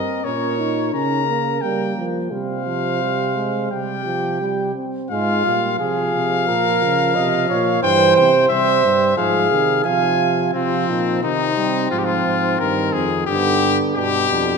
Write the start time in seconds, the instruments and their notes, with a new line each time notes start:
Already playing: euphonium C4, flugelhorn A#4, trumpet D#5
0.25 bass trombone A#2, euphonium C#4, flugelhorn A#4, trumpet C#5
0.59 euphonium D#4
0.93 bass trombone C#3, euphonium C#4, flugelhorn A#4, trumpet A#5
1.28 euphonium A#3
1.61 bass trombone G3, euphonium A#3, trumpet G5
1.97 bass trombone F3
2.31 bass trombone C3, euphonium G3, flugelhorn C5, trumpet F5
2.67 euphonium F3
3.02 euphonium G3
3.36 euphonium G#3
3.71 bass trombone C3, euphonium G3, flugelhorn G4, trumpet G5
4.06 euphonium F3
4.41 euphonium G3
4.75 euphonium C4
5.11 bass trombone G#2, euphonium G#3, flugelhorn F4, trumpet F5
5.45 bass trombone A#2, euphonium G3
5.78 bass trombone C3, euphonium F3, flugelhorn G#4, trumpet F5
6.15 bass trombone C3
6.47 bass trombone A#2, flugelhorn A#4
6.82 bass trombone C#3
7.15 bass trombone C3, flugelhorn D#5
7.49 bass trombone A#2, flugelhorn C#5
7.82 bass trombone G2, euphonium E3, flugelhorn C5, trumpet G5
8.16 bass trombone C3, trumpet G5
8.49 bass trombone C3, euphonium G3, flugelhorn C5, trumpet E5
8.83 bass trombone G2, euphonium G3
9.17 bass trombone G#2, euphonium F3, flugelhorn G#4, trumpet F5
9.51 bass trombone C3, euphonium D#3
9.84 bass trombone C3, euphonium F3, flugelhorn F5, trumpet G#5
10.53 bass trombone C3, euphonium F3, trumpet C4, flugelhorn F4
10.89 bass trombone A#2, flugelhorn D#4
11.22 bass trombone C3, euphonium D#3, flugelhorn C4, trumpet D#4
11.57 euphonium G3
11.91 bass trombone G#2, euphonium F3, trumpet F4
11.99 trumpet G4
12.05 trumpet F4
12.26 bass trombone G#2
12.59 bass trombone G2, euphonium D#3, trumpet A#4
12.93 bass trombone F2, trumpet G#4
13.27 bass trombone G2, euphonium D3, flugelhorn B3, trumpet G4
13.95 bass trombone G2, euphonium B2, flugelhorn D4, trumpet G4
14.30 bass trombone F2, flugelhorn D4